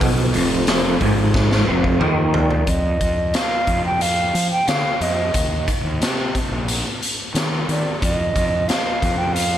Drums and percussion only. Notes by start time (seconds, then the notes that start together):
0.01 kick, open hi-hat
0.34 open hi-hat
0.67 snare, open hi-hat
1.01 kick, open hi-hat
1.34 kick, snare
1.52 snare
1.84 kick
2.01 mid tom
2.34 floor tom
2.51 floor tom
2.67 kick, closed hi-hat
3.01 kick, closed hi-hat
3.34 snare, closed hi-hat
3.67 kick, closed hi-hat
4.01 closed hi-hat
4.35 closed hi-hat
4.68 snare, closed hi-hat
5.01 closed hi-hat
5.34 kick, closed hi-hat
5.68 kick, closed hi-hat
6.02 snare, closed hi-hat
6.35 kick, closed hi-hat
6.68 closed hi-hat
7.02 closed hi-hat
7.35 snare, closed hi-hat
7.69 closed hi-hat
8.02 kick, closed hi-hat
8.36 kick, closed hi-hat
8.69 snare, closed hi-hat
9.02 kick, closed hi-hat
9.36 closed hi-hat